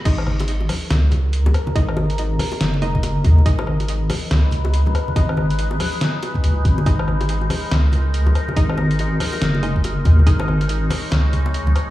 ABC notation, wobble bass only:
X:1
M:4/4
L:1/8
Q:"Swing 16ths" 1/4=141
K:G#m
V:1 name="Wobble bass" clef=bass
G,,,3 z C,,3 z | G,,,3 z F,,,3 D,, | G,,,3 z C,,3 z | G,,,3 z3 C,, G,,, |
G,,,3 z C,,3 z | G,,,3 z F,,,3 D,, | G,,,3 z C,,3 z |]